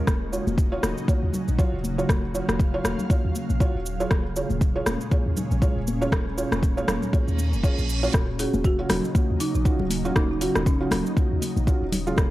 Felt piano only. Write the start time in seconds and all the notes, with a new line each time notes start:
0.32 F4 F#4 C#5
0.72 F4 F#4 C#5
1.08 F4 F#4 C#5
1.59 F4 F#4 C#5
1.98 F4 F#4 C#5
2.35 F4 F#4 C#5
2.74 F4 F#4 C#5
3.10 F4 F#4 C#5
3.61 F4 F#4 C#5
4.00 F4 G#4 C#5
4.36 F4 G#4 C#5
4.76 F4 G#4 C#5
5.12 F4 G#4 C#5
5.62 F4 G#4 C#5
6.01 F4 G#4 C#5
6.37 F4 G#4 C#5
6.77 F4 G#4 C#5
7.13 F4 G#4 C#5
7.64 F4 G#4 C#5
8.03 F4 F#4 C#5
8.39 C#4 F4 F#4
8.79 C#4 F4 F#4
9.15 C#4 F4 F#4
9.65 C#4 F4 F#4
10.05 C#4 F4 F#4
10.41 C#4 F4 F#4
10.81 C#4 F4 F#4
11.17 C#4 F4 F#4
11.67 C#4 F4 F#4
12.07 G#3 C#4 F4